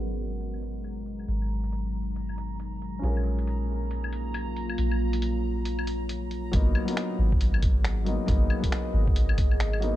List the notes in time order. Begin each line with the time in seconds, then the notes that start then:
Already playing: G#1 F#3 G#3 B3 C#4 D#4 F#4 A#4 F#5 A#5
0.40 closed hi-hat
0.54 claves
0.62 closed hi-hat
0.84 closed hi-hat, claves
1.06 closed hi-hat
1.19 claves
1.28 G#1, closed hi-hat
1.42 claves
1.64 closed hi-hat
1.73 closed hi-hat
2.16 closed hi-hat
2.29 claves
2.38 closed hi-hat
2.60 closed hi-hat
2.82 closed hi-hat
2.99 A#1 A#3 C#4 F4
3.03 G#4 A#4, closed hi-hat
3.15 F4 F5, claves
3.39 closed hi-hat
3.47 closed hi-hat
3.63 C#5
3.91 closed hi-hat
4.04 claves
4.13 closed hi-hat
4.34 closed hi-hat, claves
4.56 closed hi-hat
4.69 claves
4.78 A#1, closed hi-hat
4.91 claves
5.13 closed hi-hat
5.22 closed hi-hat
5.65 closed hi-hat
5.79 claves
5.87 closed hi-hat
6.09 closed hi-hat
6.31 closed hi-hat
6.52 G#1 F#3 A#3 B3, kick, closed hi-hat
6.56 D#4
6.75 D#5, claves
6.85 F#3 A#3, closed hi-hat
6.90 B3 D#4 G#4
6.97 finger snap, closed hi-hat
7.19 G#1
7.32 F#5, kick
7.41 closed hi-hat
7.54 claves
7.62 kick, closed hi-hat
7.85 finger snap, closed hi-hat
8.04 F#3 A#3 B3 D#4, closed hi-hat
8.26 G#1 F#3 A#3 B3 D#4, kick, closed hi-hat
8.50 claves
8.59 F#3 A#3
8.64 B3 D#4, kick, closed hi-hat
8.72 finger snap, closed hi-hat
8.94 G#1
9.08 kick
9.16 closed hi-hat
9.29 claves
9.38 kick, closed hi-hat
9.51 claves
9.60 finger snap, closed hi-hat
9.73 claves
9.80 F#3 A#3 B3 D#4, closed hi-hat